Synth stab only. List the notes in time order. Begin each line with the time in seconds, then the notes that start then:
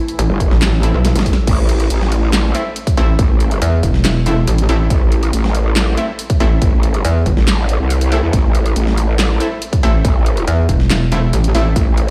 0.83 A3 C4 E4
2.55 A3 C4 E4
2.97 A3 C4 E4
4.26 A3 C4 E4
4.69 A3 C4 E4
5.97 A3 C4 E4
6.40 A3 C4 E4
8.12 A3 C4 E4
9.40 A3 C4 E4
9.83 A3 C4 E4
11.12 A3 C4 E4
11.55 A3 C4 E4